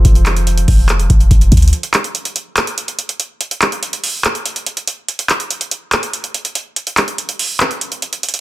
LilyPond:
<<
  \new Staff \with { instrumentName = "Grand piano" } { \time 4/4 \key f \major \tempo 4 = 143 <f f' a' c''>1 | r1 | r1 | r1 |
r1 | }
  \new Staff \with { instrumentName = "808-style bass" } { \clef bass \time 4/4 \key f \major f,,4. f,,4 f,,8 f,,8 d,8 | r1 | r1 | r1 |
r1 | }
  \new DrumStaff \with { instrumentName = "Drums" } \drummode { \time 4/4 <hh bd>16 hh16 <hc hh>16 hh16 hh16 hh16 <hho bd>8 <hc hh>16 hh16 <hh bd>16 hh16 <hh bd>16 hh16 <hh bd>32 hh32 hh32 hh32 | hh16 hh16 <hc hh>16 hh16 hh16 hh16 hh8 <hc hh>16 hh16 hh16 hh16 hh16 hh16 hh8 | hh16 hh16 <hc hh>16 hh16 hh16 hh16 hho8 <hc hh>16 hh16 hh16 hh16 hh16 hh16 hh8 | hh16 hh16 <hc hh>16 hh16 hh16 hh16 hh8 <hc hh>16 hh16 hh16 hh16 hh16 hh16 hh8 |
hh16 hh16 <hc hh>16 hh16 hh16 hh16 hho8 <hc hh>16 hh16 hh16 hh16 hh16 hh16 hh32 hh32 hh16 | }
>>